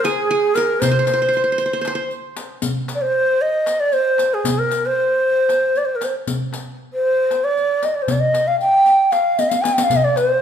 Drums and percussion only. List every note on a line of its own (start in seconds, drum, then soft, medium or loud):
0.04 riq soft
0.04 darbuka tek medium
0.56 riq medium
0.56 darbuka tek medium
0.82 riq medium
0.82 darbuka dum loud
1.07 riq medium
1.07 darbuka tek medium
1.33 riq soft
1.33 darbuka ka soft
1.59 riq soft
1.59 darbuka ka soft
1.85 riq soft
1.85 darbuka tek medium
2.11 riq soft
2.11 darbuka ka soft
2.37 riq medium
2.37 darbuka tek medium
2.62 riq medium
2.62 darbuka dum medium
2.88 riq soft
2.88 darbuka tek medium
3.15 darbuka ka soft
3.41 darbuka ka soft
3.66 riq soft
3.66 darbuka tek medium
3.93 riq soft
4.18 riq soft
4.18 darbuka tek medium
4.44 riq medium
4.44 darbuka dum medium
4.71 riq soft
4.71 darbuka tek medium
4.97 darbuka ka soft
5.23 darbuka ka soft
5.49 riq soft
5.49 darbuka tek medium
5.75 riq soft
5.75 darbuka ka soft
6.01 riq soft
6.01 darbuka tek medium
6.27 riq medium
6.27 darbuka dum medium
6.53 riq soft
6.53 darbuka tek medium
6.79 darbuka ka soft
7.05 darbuka ka soft
7.31 riq soft
7.31 darbuka tek medium
7.57 riq soft
7.57 darbuka ka soft
7.83 riq soft
7.83 darbuka tek medium
8.08 riq medium
8.08 darbuka dum medium
8.34 riq soft
8.34 darbuka tek medium
8.61 riq soft
8.61 darbuka ka soft
8.86 riq soft
8.86 darbuka ka soft
9.12 riq soft
9.12 darbuka tek medium
9.38 riq soft
9.38 darbuka ka soft
9.51 riq medium
9.64 riq medium
9.64 darbuka tek medium
9.78 riq medium
9.90 riq medium
9.90 darbuka dum medium
10.16 riq soft
10.16 darbuka tek medium